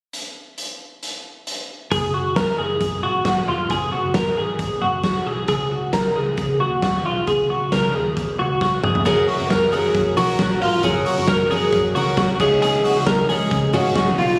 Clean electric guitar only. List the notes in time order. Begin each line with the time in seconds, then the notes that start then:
1.92 G#4
2.14 F#4
2.36 A#4
2.58 G#4
3.03 F#4
3.26 F#4
3.48 F4
3.71 G#4
3.92 F#4
4.15 A#4
4.37 G#4
4.82 F#4
5.04 F#4
5.27 G#4
5.49 G#4
5.71 F#4
5.93 A#4
6.16 G#4
6.60 F#4
6.84 F#4
7.06 F4
7.28 G#4
7.50 F#4
7.72 A#4
7.95 G#4
8.39 F#4
8.62 F#4
8.84 G#4
9.06 G#4
9.28 F#4
9.50 A#4
9.72 G#4
10.17 F#4
10.39 F#4
10.62 F4
10.84 G#4
11.06 F#4
11.29 A#4
11.51 G#4
11.95 F#4
12.18 F#4
12.40 G#4
12.62 G#4
12.84 F#4
13.06 A#4
13.29 G#4
13.74 F#4
13.96 F#4
14.18 F4